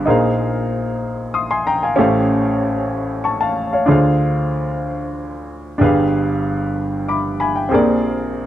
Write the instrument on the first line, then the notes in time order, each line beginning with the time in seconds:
grand piano
Already playing: B4
0.05 A#1 A#2 D#4 G#4 A#4 C5
0.10 F5
1.34 C6 D#6
1.51 G#5 C6
1.67 G5 A#5
1.83 F5 G#5
1.96 A1 A2 C#4 G4 A4 C5
2.00 F5
3.24 A5 C#6
3.41 F5 A5
3.73 C#5 F5
3.86 D2 D3 D4 F4 G#4 C5
3.91 F5
5.78 G1 G2 D4 G4 G#4
5.82 B4 F5
7.08 B5 D6
7.40 G#5 B5
7.56 G5
7.69 A#1 A#2 C4 G4 G#4
7.73 A#4 D5